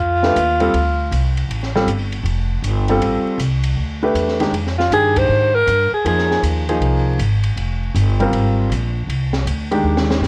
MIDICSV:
0, 0, Header, 1, 6, 480
1, 0, Start_track
1, 0, Tempo, 379267
1, 1897, Time_signature, 4, 2, 24, 8
1, 13005, End_track
2, 0, Start_track
2, 0, Title_t, "Alto saxophone"
2, 0, Program_c, 0, 65
2, 0, Note_on_c, 0, 65, 82
2, 1695, Note_off_c, 0, 65, 0
2, 6046, Note_on_c, 0, 65, 71
2, 6204, Note_off_c, 0, 65, 0
2, 6236, Note_on_c, 0, 68, 93
2, 6552, Note_on_c, 0, 72, 103
2, 6571, Note_off_c, 0, 68, 0
2, 7025, Note_on_c, 0, 70, 99
2, 7044, Note_off_c, 0, 72, 0
2, 7493, Note_off_c, 0, 70, 0
2, 7518, Note_on_c, 0, 68, 75
2, 7661, Note_off_c, 0, 68, 0
2, 7691, Note_on_c, 0, 68, 78
2, 8120, Note_off_c, 0, 68, 0
2, 13005, End_track
3, 0, Start_track
3, 0, Title_t, "Grand piano"
3, 0, Program_c, 1, 0
3, 296, Note_on_c, 1, 57, 67
3, 304, Note_on_c, 1, 62, 60
3, 305, Note_on_c, 1, 67, 55
3, 307, Note_on_c, 1, 71, 73
3, 446, Note_off_c, 1, 57, 0
3, 450, Note_off_c, 1, 62, 0
3, 451, Note_off_c, 1, 67, 0
3, 452, Note_off_c, 1, 71, 0
3, 764, Note_on_c, 1, 55, 68
3, 767, Note_on_c, 1, 60, 66
3, 770, Note_on_c, 1, 65, 64
3, 774, Note_on_c, 1, 69, 77
3, 920, Note_off_c, 1, 55, 0
3, 921, Note_off_c, 1, 60, 0
3, 923, Note_off_c, 1, 65, 0
3, 925, Note_off_c, 1, 69, 0
3, 2219, Note_on_c, 1, 60, 59
3, 2220, Note_on_c, 1, 55, 71
3, 2220, Note_on_c, 1, 65, 54
3, 2223, Note_on_c, 1, 69, 71
3, 2366, Note_off_c, 1, 60, 0
3, 2366, Note_off_c, 1, 65, 0
3, 2367, Note_off_c, 1, 55, 0
3, 2368, Note_off_c, 1, 69, 0
3, 3660, Note_on_c, 1, 60, 67
3, 3664, Note_on_c, 1, 55, 66
3, 3669, Note_on_c, 1, 65, 61
3, 3677, Note_on_c, 1, 69, 74
3, 4268, Note_off_c, 1, 60, 0
3, 4270, Note_off_c, 1, 55, 0
3, 4273, Note_off_c, 1, 65, 0
3, 4276, Note_off_c, 1, 69, 0
3, 5097, Note_on_c, 1, 62, 61
3, 5101, Note_on_c, 1, 57, 71
3, 5104, Note_on_c, 1, 71, 75
3, 5106, Note_on_c, 1, 67, 63
3, 5539, Note_off_c, 1, 62, 0
3, 5540, Note_off_c, 1, 57, 0
3, 5542, Note_off_c, 1, 71, 0
3, 5543, Note_off_c, 1, 67, 0
3, 5563, Note_on_c, 1, 51, 57
3, 5572, Note_on_c, 1, 56, 60
3, 5573, Note_on_c, 1, 67, 63
3, 5577, Note_on_c, 1, 62, 53
3, 5717, Note_off_c, 1, 51, 0
3, 5721, Note_off_c, 1, 56, 0
3, 5722, Note_off_c, 1, 67, 0
3, 5724, Note_off_c, 1, 62, 0
3, 6226, Note_on_c, 1, 51, 58
3, 6232, Note_on_c, 1, 62, 55
3, 6240, Note_on_c, 1, 68, 48
3, 6245, Note_on_c, 1, 67, 69
3, 6946, Note_off_c, 1, 51, 0
3, 6949, Note_off_c, 1, 62, 0
3, 6953, Note_off_c, 1, 68, 0
3, 6956, Note_off_c, 1, 67, 0
3, 7658, Note_on_c, 1, 53, 59
3, 7658, Note_on_c, 1, 63, 51
3, 7661, Note_on_c, 1, 58, 55
3, 7666, Note_on_c, 1, 68, 68
3, 8383, Note_off_c, 1, 53, 0
3, 8383, Note_off_c, 1, 63, 0
3, 8384, Note_off_c, 1, 58, 0
3, 8387, Note_off_c, 1, 68, 0
3, 8466, Note_on_c, 1, 53, 62
3, 8470, Note_on_c, 1, 68, 77
3, 8471, Note_on_c, 1, 58, 62
3, 8475, Note_on_c, 1, 63, 59
3, 9072, Note_off_c, 1, 53, 0
3, 9074, Note_off_c, 1, 68, 0
3, 9075, Note_off_c, 1, 58, 0
3, 9077, Note_off_c, 1, 63, 0
3, 10373, Note_on_c, 1, 55, 65
3, 10386, Note_on_c, 1, 60, 64
3, 10389, Note_on_c, 1, 65, 65
3, 10395, Note_on_c, 1, 70, 71
3, 10986, Note_off_c, 1, 55, 0
3, 10993, Note_off_c, 1, 60, 0
3, 10994, Note_off_c, 1, 65, 0
3, 10997, Note_off_c, 1, 70, 0
3, 12292, Note_on_c, 1, 56, 60
3, 12296, Note_on_c, 1, 51, 63
3, 12296, Note_on_c, 1, 62, 59
3, 12296, Note_on_c, 1, 67, 71
3, 12906, Note_off_c, 1, 56, 0
3, 12908, Note_off_c, 1, 51, 0
3, 12908, Note_off_c, 1, 62, 0
3, 12908, Note_off_c, 1, 67, 0
3, 13005, End_track
4, 0, Start_track
4, 0, Title_t, "Upright bass"
4, 0, Program_c, 2, 32
4, 0, Note_on_c, 2, 41, 78
4, 438, Note_off_c, 2, 41, 0
4, 455, Note_on_c, 2, 39, 91
4, 922, Note_off_c, 2, 39, 0
4, 934, Note_on_c, 2, 38, 69
4, 1401, Note_off_c, 2, 38, 0
4, 1410, Note_on_c, 2, 36, 87
4, 1873, Note_off_c, 2, 36, 0
4, 1880, Note_on_c, 2, 33, 71
4, 2353, Note_off_c, 2, 33, 0
4, 2359, Note_on_c, 2, 31, 80
4, 2820, Note_off_c, 2, 31, 0
4, 2827, Note_on_c, 2, 29, 81
4, 3306, Note_off_c, 2, 29, 0
4, 3316, Note_on_c, 2, 31, 84
4, 3785, Note_off_c, 2, 31, 0
4, 3793, Note_on_c, 2, 33, 70
4, 4089, Note_off_c, 2, 33, 0
4, 4277, Note_on_c, 2, 36, 84
4, 4740, Note_off_c, 2, 36, 0
4, 4748, Note_on_c, 2, 38, 68
4, 5226, Note_off_c, 2, 38, 0
4, 5242, Note_on_c, 2, 40, 75
4, 5704, Note_off_c, 2, 40, 0
4, 5712, Note_on_c, 2, 41, 69
4, 6188, Note_off_c, 2, 41, 0
4, 6197, Note_on_c, 2, 43, 81
4, 6670, Note_off_c, 2, 43, 0
4, 6691, Note_on_c, 2, 44, 80
4, 7158, Note_off_c, 2, 44, 0
4, 7178, Note_on_c, 2, 43, 91
4, 7463, Note_off_c, 2, 43, 0
4, 7653, Note_on_c, 2, 41, 72
4, 8119, Note_off_c, 2, 41, 0
4, 8134, Note_on_c, 2, 39, 82
4, 8600, Note_off_c, 2, 39, 0
4, 8606, Note_on_c, 2, 36, 83
4, 9076, Note_off_c, 2, 36, 0
4, 9097, Note_on_c, 2, 32, 86
4, 9562, Note_off_c, 2, 32, 0
4, 9572, Note_on_c, 2, 29, 66
4, 10039, Note_off_c, 2, 29, 0
4, 10054, Note_on_c, 2, 31, 94
4, 10512, Note_off_c, 2, 31, 0
4, 10519, Note_on_c, 2, 32, 78
4, 10993, Note_off_c, 2, 32, 0
4, 11006, Note_on_c, 2, 34, 89
4, 11473, Note_off_c, 2, 34, 0
4, 11480, Note_on_c, 2, 36, 72
4, 11954, Note_off_c, 2, 36, 0
4, 11966, Note_on_c, 2, 38, 81
4, 12437, Note_off_c, 2, 38, 0
4, 12445, Note_on_c, 2, 39, 73
4, 12910, Note_off_c, 2, 39, 0
4, 12917, Note_on_c, 2, 43, 85
4, 13005, Note_off_c, 2, 43, 0
4, 13005, End_track
5, 0, Start_track
5, 0, Title_t, "Muted upright bass strokes"
5, 4095, Note_on_c, 9, 29, 38
5, 4222, Note_off_c, 9, 29, 0
5, 7492, Note_on_c, 9, 29, 35
5, 7619, Note_off_c, 9, 29, 0
5, 13005, End_track
6, 0, Start_track
6, 0, Title_t, "Drums"
6, 290, Note_on_c, 9, 38, 42
6, 417, Note_off_c, 9, 38, 0
6, 460, Note_on_c, 9, 44, 62
6, 460, Note_on_c, 9, 51, 69
6, 586, Note_off_c, 9, 44, 0
6, 586, Note_off_c, 9, 51, 0
6, 762, Note_on_c, 9, 51, 43
6, 888, Note_off_c, 9, 51, 0
6, 936, Note_on_c, 9, 51, 58
6, 1063, Note_off_c, 9, 51, 0
6, 1422, Note_on_c, 9, 44, 48
6, 1422, Note_on_c, 9, 51, 65
6, 1548, Note_off_c, 9, 44, 0
6, 1548, Note_off_c, 9, 51, 0
6, 1735, Note_on_c, 9, 51, 47
6, 1861, Note_off_c, 9, 51, 0
6, 1905, Note_on_c, 9, 51, 64
6, 2032, Note_off_c, 9, 51, 0
6, 2060, Note_on_c, 9, 38, 27
6, 2186, Note_off_c, 9, 38, 0
6, 2223, Note_on_c, 9, 38, 44
6, 2349, Note_off_c, 9, 38, 0
6, 2376, Note_on_c, 9, 44, 51
6, 2376, Note_on_c, 9, 51, 66
6, 2503, Note_off_c, 9, 44, 0
6, 2503, Note_off_c, 9, 51, 0
6, 2687, Note_on_c, 9, 51, 41
6, 2814, Note_off_c, 9, 51, 0
6, 2854, Note_on_c, 9, 51, 56
6, 2980, Note_off_c, 9, 51, 0
6, 3336, Note_on_c, 9, 44, 49
6, 3336, Note_on_c, 9, 51, 62
6, 3462, Note_off_c, 9, 44, 0
6, 3462, Note_off_c, 9, 51, 0
6, 3645, Note_on_c, 9, 51, 47
6, 3771, Note_off_c, 9, 51, 0
6, 3817, Note_on_c, 9, 51, 61
6, 3943, Note_off_c, 9, 51, 0
6, 4296, Note_on_c, 9, 44, 65
6, 4296, Note_on_c, 9, 51, 72
6, 4423, Note_off_c, 9, 44, 0
6, 4423, Note_off_c, 9, 51, 0
6, 4600, Note_on_c, 9, 51, 66
6, 4727, Note_off_c, 9, 51, 0
6, 5258, Note_on_c, 9, 44, 57
6, 5258, Note_on_c, 9, 51, 66
6, 5384, Note_off_c, 9, 44, 0
6, 5384, Note_off_c, 9, 51, 0
6, 5419, Note_on_c, 9, 38, 29
6, 5546, Note_off_c, 9, 38, 0
6, 5567, Note_on_c, 9, 51, 48
6, 5587, Note_on_c, 9, 38, 43
6, 5694, Note_off_c, 9, 51, 0
6, 5713, Note_off_c, 9, 38, 0
6, 5742, Note_on_c, 9, 51, 59
6, 5868, Note_off_c, 9, 51, 0
6, 5903, Note_on_c, 9, 38, 27
6, 6029, Note_off_c, 9, 38, 0
6, 6067, Note_on_c, 9, 38, 39
6, 6194, Note_off_c, 9, 38, 0
6, 6223, Note_on_c, 9, 44, 61
6, 6223, Note_on_c, 9, 51, 66
6, 6350, Note_off_c, 9, 44, 0
6, 6350, Note_off_c, 9, 51, 0
6, 6532, Note_on_c, 9, 36, 77
6, 6532, Note_on_c, 9, 51, 72
6, 6658, Note_off_c, 9, 36, 0
6, 6658, Note_off_c, 9, 51, 0
6, 7184, Note_on_c, 9, 44, 59
6, 7184, Note_on_c, 9, 51, 60
6, 7310, Note_off_c, 9, 44, 0
6, 7310, Note_off_c, 9, 51, 0
6, 7667, Note_on_c, 9, 51, 64
6, 7794, Note_off_c, 9, 51, 0
6, 7829, Note_on_c, 9, 38, 27
6, 7956, Note_off_c, 9, 38, 0
6, 7987, Note_on_c, 9, 38, 39
6, 8113, Note_off_c, 9, 38, 0
6, 8145, Note_on_c, 9, 44, 60
6, 8145, Note_on_c, 9, 51, 66
6, 8271, Note_off_c, 9, 44, 0
6, 8271, Note_off_c, 9, 51, 0
6, 8465, Note_on_c, 9, 51, 45
6, 8591, Note_off_c, 9, 51, 0
6, 8627, Note_on_c, 9, 51, 55
6, 8753, Note_off_c, 9, 51, 0
6, 9105, Note_on_c, 9, 44, 63
6, 9105, Note_on_c, 9, 51, 63
6, 9232, Note_off_c, 9, 44, 0
6, 9232, Note_off_c, 9, 51, 0
6, 9412, Note_on_c, 9, 51, 52
6, 9538, Note_off_c, 9, 51, 0
6, 9587, Note_on_c, 9, 51, 54
6, 9713, Note_off_c, 9, 51, 0
6, 10067, Note_on_c, 9, 44, 66
6, 10067, Note_on_c, 9, 51, 64
6, 10193, Note_off_c, 9, 44, 0
6, 10193, Note_off_c, 9, 51, 0
6, 10376, Note_on_c, 9, 51, 39
6, 10503, Note_off_c, 9, 51, 0
6, 10540, Note_on_c, 9, 51, 55
6, 10666, Note_off_c, 9, 51, 0
6, 11032, Note_on_c, 9, 44, 57
6, 11032, Note_on_c, 9, 51, 61
6, 11158, Note_off_c, 9, 44, 0
6, 11158, Note_off_c, 9, 51, 0
6, 11511, Note_on_c, 9, 51, 56
6, 11637, Note_off_c, 9, 51, 0
6, 11810, Note_on_c, 9, 38, 52
6, 11937, Note_off_c, 9, 38, 0
6, 11987, Note_on_c, 9, 44, 54
6, 11987, Note_on_c, 9, 51, 72
6, 12114, Note_off_c, 9, 44, 0
6, 12114, Note_off_c, 9, 51, 0
6, 12297, Note_on_c, 9, 51, 38
6, 12423, Note_off_c, 9, 51, 0
6, 12622, Note_on_c, 9, 38, 62
6, 12748, Note_off_c, 9, 38, 0
6, 12789, Note_on_c, 9, 38, 74
6, 12915, Note_off_c, 9, 38, 0
6, 12949, Note_on_c, 9, 38, 54
6, 12951, Note_on_c, 9, 44, 47
6, 13005, Note_off_c, 9, 38, 0
6, 13005, Note_off_c, 9, 44, 0
6, 13005, End_track
0, 0, End_of_file